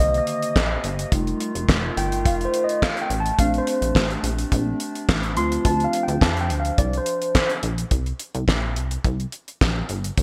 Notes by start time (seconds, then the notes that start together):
Already playing: C3 D3 D#3 A#3 D#5
0.00 C2 D#5
0.14 D#5, closed hi-hat
0.27 closed hi-hat
0.42 closed hi-hat
0.56 A#1, kick, snare, clap
0.84 G1, closed hi-hat
0.99 closed hi-hat
1.12 F1 D#3 G3 A3 D#4 F4, kick, closed hi-hat
1.27 closed hi-hat
1.40 closed hi-hat
1.55 F1, closed hi-hat
1.69 F1, kick, snare, clap
1.97 G1 G5, closed hi-hat
2.12 closed hi-hat
2.25 F1 F5, kick, closed hi-hat
2.41 closed hi-hat
2.45 C5
2.54 closed hi-hat
2.64 D#5
2.69 closed hi-hat
2.82 F5, kick, snare, clap
2.97 closed hi-hat
3.01 G5
3.10 A1, closed hi-hat
3.20 A5
3.26 closed hi-hat
3.38 A#1 C3 A3 C4 D4 F5, kick, closed hi-hat
3.54 closed hi-hat
3.58 C5
3.67 closed hi-hat
3.82 A#1, closed hi-hat
3.95 A1, kick, snare, clap
4.10 closed hi-hat
4.23 A#1, closed hi-hat
4.39 closed hi-hat
4.52 A#1 A3 C4 D4, kick, closed hi-hat
4.80 closed hi-hat
4.95 closed hi-hat
5.09 A1, kick, snare, clap
5.23 closed hi-hat
5.36 D2 F3 A3 C4 F4 C6, closed hi-hat
5.52 closed hi-hat
5.65 D2 A5, kick, closed hi-hat
5.80 closed hi-hat
5.84 F5
5.93 closed hi-hat
6.03 G5
6.08 D2, closed hi-hat
6.21 F2 A5, kick, snare, clap
6.37 G5, closed hi-hat
6.50 D2, closed hi-hat
6.60 F5
6.65 closed hi-hat
6.78 C2 D5, kick, closed hi-hat
6.93 closed hi-hat
6.98 C5
7.06 closed hi-hat
7.22 closed hi-hat
7.35 kick, snare, clap
7.50 closed hi-hat
7.63 A#1, closed hi-hat
7.78 closed hi-hat
7.91 C2, kick, closed hi-hat
8.06 closed hi-hat
8.19 closed hi-hat
8.35 C2, closed hi-hat
8.48 A#1, kick, snare, clap
8.76 C2, closed hi-hat
8.91 closed hi-hat
9.04 C2, kick, closed hi-hat
9.20 closed hi-hat
9.32 closed hi-hat
9.48 closed hi-hat
9.61 A#1, kick, snare, clap
9.89 G1, closed hi-hat
10.04 closed hi-hat
10.18 F1, kick, closed hi-hat